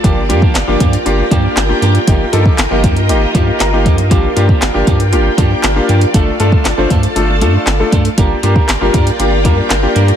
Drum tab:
HH |x-x-x-xxx-x-x-xx|x-x-x-xxx-x-x-xx|x-x-x-xxx-x-x-xx|x-x-x-xxx-x-x-xx|
CP |----x-------x---|----x-------x---|----x-------x---|----x-------x---|
SD |----o-------o---|----o-------o---|----o-------o---|----o-------o---|
BD |o--o--o---o-----|o--o--o---o---o-|o--o--o---o-----|o--o--o-------o-|

HH |x-x-x-xxx-x-x-xx|
CP |----x-------x---|
SD |----o-------o---|
BD |o--o--o---o-----|